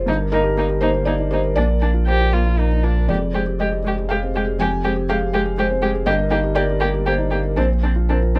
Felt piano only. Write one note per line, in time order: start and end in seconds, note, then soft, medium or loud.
0.00 0.10 C4 medium
0.00 0.10 F4 medium
0.00 0.10 G#4 medium
0.00 0.10 C5 medium
0.00 0.10 D5 medium
0.06 1.52 G2 medium
0.18 0.30 A#4 soft
0.32 0.51 D#4 medium
0.32 0.55 A#4 loud
0.44 0.64 G4 medium
0.57 0.76 A#4 medium
0.69 0.89 G4 medium
0.81 1.01 A#3 medium
0.81 1.04 C5 medium
0.94 1.14 G4 medium
1.05 1.26 A#4 medium
1.05 1.29 D5 medium
1.19 1.39 D#4 medium
1.31 1.51 G4 medium
1.31 1.54 C5 medium
1.43 1.56 A#4 medium
1.56 3.05 A#2 medium
1.56 2.03 D5 loud
1.69 1.89 A#4 soft
1.82 2.02 D4 soft
1.94 2.15 F4 soft
2.07 2.28 A#4 medium
2.07 2.55 C5 medium
2.20 2.40 F4 soft
2.34 2.53 A#3 soft
2.46 2.66 F4 soft
2.58 2.78 A#4 soft
2.71 2.91 D4 soft
2.83 3.04 F4 soft
2.96 3.09 A#4 soft
3.08 4.55 F2 medium
3.08 3.56 D5 medium
3.21 3.42 G#4 soft
3.33 3.54 C4 medium
3.47 3.67 G4 soft
3.59 3.79 G#4 medium
3.59 4.06 D#5 medium
3.72 3.92 G4 soft
3.84 4.04 G#3 soft
3.97 4.17 G4 soft
4.09 4.30 G#4 medium
4.09 4.55 F5 medium
4.22 4.42 C4 soft
4.35 4.54 G4 soft
4.47 4.67 G#4 medium
4.59 6.02 F2 medium
4.59 5.05 G#5 medium
4.71 4.91 G4 soft
4.84 5.04 C4 medium
4.96 5.16 G4 medium
5.09 5.29 G#4 medium
5.09 5.55 F5 loud
5.21 5.41 G4 medium
5.33 5.53 G#3 medium
5.45 5.65 G4 medium
5.58 5.77 G#4 medium
5.58 6.03 C5 medium
5.71 5.90 C4 medium
5.83 6.02 G4 medium
5.94 6.06 G#4 medium
6.06 7.53 G2 medium
6.06 6.52 D#5 loud
6.19 6.38 A#4 medium
6.31 6.51 D#4 medium
6.44 6.63 G4 medium
6.55 6.76 A#4 medium
6.55 7.02 D5 loud
6.69 6.89 G4 medium
6.81 7.01 A#3 medium
6.94 7.14 G4 medium
7.06 7.26 A#4 medium
7.06 7.54 C5 medium
7.19 7.39 D#4 medium
7.31 7.52 G4 medium
7.44 7.57 A#4 soft
7.57 8.39 A#2 medium
7.57 7.69 C5 medium
7.70 7.91 C5 soft
7.84 8.04 D4 soft
7.96 8.17 F4 soft
8.10 8.39 A#4 medium
8.10 8.30 C5 soft
8.22 8.39 F4 soft
8.36 8.39 C4 soft